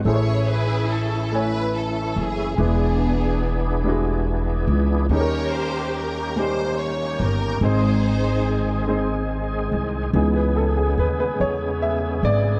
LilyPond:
<<
  \new Staff \with { instrumentName = "String section" } { \time 6/8 \key cis \minor \tempo 4. = 48 << { cis''8 b'8 a'8 b'8 a'8 gis'8 | gis'4. r4. | cis''8 bis'8 ais'8 bis'8 cis''8 ais'8 | bis'4. r4. |
r2. | } \\ { <e' gis'>4. r4. | <b d'>4. r4. | <g' ais'>4. r4. | <dis' gis'>4. r4. |
r2. | } >> }
  \new Staff \with { instrumentName = "Grand piano" } { \time 6/8 \key cis \minor <a e' gis' bis' cis''>4. <a e' cis'' gis''>4. | <gis d' e' b'>4. <g gis d' e' fis'>4. | <g cis' dis' gis' ais'>4. <g cis' dis' g'>4. | <gis bis dis' bis'>4. <gis bis dis' bis'>4. |
gis'16 b'16 a'16 gis'16 b'16 b'16 cis''8 e''8 d''8 | }
  \new Staff \with { instrumentName = "Grand piano" } { \clef bass \time 6/8 \key cis \minor a,4. r4. | e4. r4. | dis4. r4. | gis,4. r4. |
<e b dis'>8 r2 r8 | }
  \new Staff \with { instrumentName = "French horn section" } { \time 6/8 \key cis \minor r2. | r2. | r2. | r2. |
<cis b gis'>2. | }
  \new Staff \with { instrumentName = "Tonewheel organ" } { \time 6/8 \key cis \minor <e a cis' e'>2. | <e b d' gis'>2. | <dis ais cis' g'>2. | <dis gis bis gis'>2. |
<cis gis b gis'>2. | }
  \new Staff \with { instrumentName = "Upright bass" } { \clef bass \time 6/8 \key cis \minor a,,2~ a,,8 fis,,8 | e,,2~ e,,8 cis,8 | dis,2~ dis,8 g,,8 | gis,,2~ gis,,8 bis,,8 |
cis,4 dis,8 e,4 gis,,8 | }
>>